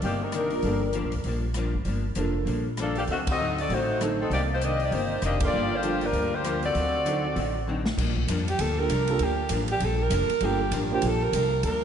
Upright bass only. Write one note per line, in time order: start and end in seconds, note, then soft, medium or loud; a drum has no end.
0.02 0.60 G1 medium
0.63 1.01 G1 medium
1.05 1.14 A#1 medium
1.15 1.24 D2 medium
1.24 1.70 A#1 medium
1.74 1.84 G#1 medium
1.85 2.14 G1 medium
2.16 2.45 F1 medium
2.46 3.05 A#1 medium
3.07 3.66 D2 medium
3.69 4.27 A1 medium
4.30 4.89 C2 medium
4.91 5.20 G1 medium
5.22 5.51 F1 medium
5.53 6.11 G1 medium
6.13 6.71 D2 medium
6.75 7.33 D2 medium
7.36 7.94 A1 medium
7.97 8.27 A#1 medium
8.27 8.57 F2 medium
8.59 8.88 D2 medium
8.89 9.19 C2 medium
9.19 9.49 D2 medium
9.50 9.80 A1 medium
9.80 10.10 A#1 medium
10.10 10.28 F1 medium
10.29 muted upright bass stroke soft
10.41 10.70 G1 medium
10.71 11.01 A1 medium
11.03 11.32 A#1 medium
11.33 11.63 C2 loud
11.63 11.84 D2 medium